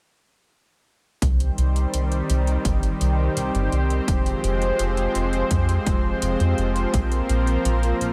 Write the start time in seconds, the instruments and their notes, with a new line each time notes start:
1.22 analog synth bass C2, analog synth pad D#3 G3 C4 G4 C5, kick, closed hi-hat
1.40 closed hi-hat
1.58 analog synth bass C2, closed hi-hat
1.76 closed hi-hat
1.94 analog synth bass C2, closed hi-hat
2.12 closed hi-hat
2.30 analog synth bass C2, closed hi-hat
2.47 closed hi-hat
2.65 analog synth bass G1, kick, closed hi-hat
2.83 closed hi-hat
3.01 analog synth bass C2, closed hi-hat
3.37 analog synth bass C2, closed hi-hat
3.54 analog synth bass G1, closed hi-hat
3.72 analog synth bass C2, closed hi-hat
3.90 closed hi-hat
4.08 analog synth bass F1, analog synth pad F3 G#3, kick, closed hi-hat
4.26 closed hi-hat
4.44 analog synth bass F1, closed hi-hat
4.62 closed hi-hat
4.79 analog synth bass F1, closed hi-hat
4.97 closed hi-hat
5.15 analog synth bass F1, closed hi-hat
5.33 closed hi-hat
5.51 analog synth bass F2, kick, closed hi-hat
5.69 closed hi-hat
5.86 analog synth bass F1, kick, closed hi-hat
6.22 analog synth bass F1, closed hi-hat
6.40 analog synth bass F2, closed hi-hat
6.58 analog synth bass F1, closed hi-hat
6.76 closed hi-hat
6.94 analog synth bass A#1, analog synth pad A#3 A#4, kick, closed hi-hat
7.12 closed hi-hat
7.29 analog synth bass A#1, closed hi-hat
7.47 closed hi-hat
7.65 analog synth bass A#1, closed hi-hat
7.83 closed hi-hat
8.01 analog synth bass A#1, closed hi-hat